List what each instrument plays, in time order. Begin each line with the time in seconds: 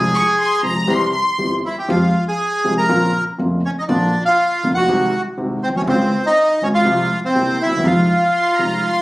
Already playing: grand piano C2 C3 G#3 C4 G#4, upright bass C2, bandoneon G#4 G#5
0.14 violin section C#6
0.40 violin section C6
0.63 grand piano C2 C3 F3 G#3 C4 G#4, upright bass C2, violin section A#5
0.87 grand piano C2 C3 E3 G3 C4 G4, upright bass C2, violin section C6
1.13 violin section C6
1.38 grand piano G1 G2 E3 G3 C4 G4, upright bass G1
1.65 bandoneon E4 E5
1.78 bandoneon G4 G5
1.88 grand piano F2 F3 G#3 C4 G4, upright bass F2, bandoneon F4 F5
2.28 bandoneon G#4 G#5
2.64 grand piano C2 C3 F3 G#3 C4 G4, upright bass C2
2.78 bandoneon A#4 A#5
2.89 grand piano A#1 A#2 C#3 A#3 C4 F4, upright bass A#1
3.38 grand piano F1 F2 C#3 A#3 C4 F4, upright bass F1
3.66 bandoneon C#4 C#5
3.79 bandoneon D#4 D#5
3.88 upright bass A#1, grand piano A#1 A#2 D3 F3 A#3 F4, bandoneon D4 D5
4.25 bandoneon F4 F5
4.63 grand piano F1 F2 D3 F3 A#3 F4, upright bass F1
4.74 bandoneon F#4 F#5
4.88 upright bass C2, grand piano C2 C3 D#3 G#3 C4 F#4
5.38 grand piano C2 C3 D#3 G#3 C4 F#4, upright bass C2
5.63 bandoneon C4 C5
5.69 upright bass A#1, grand piano A#1
5.75 upright bass B1, grand piano B1, bandoneon C#4 C#5
5.81 upright bass C2, grand piano C2
5.87 upright bass C#2, grand piano C#2 C#3 G#3 C4 F4, bandoneon C4 C5
6.26 bandoneon D#4 D#5
6.62 upright bass G#1, grand piano G#1 G#2 C#3 G#3 C4 F4, bandoneon C#4 C#5
6.74 bandoneon F4 F5
6.85 grand piano C2 C3 F3 G#3 F4, upright bass C2
7.25 bandoneon C4 C5
7.35 grand piano C2 C3 G3 A#3 E4, upright bass C2
7.62 upright bass D2, bandoneon E4 E5
7.67 grand piano D2
7.72 upright bass D#2, grand piano D#2
7.78 upright bass E2, grand piano E2
7.84 grand piano F2 C3 F3 G#3 D#4, upright bass F2, bandoneon F4 F5
8.34 violin section C6
8.59 upright bass C2, grand piano C2 C3 F3 G#3 D#4, violin section A#5
8.85 violin section C6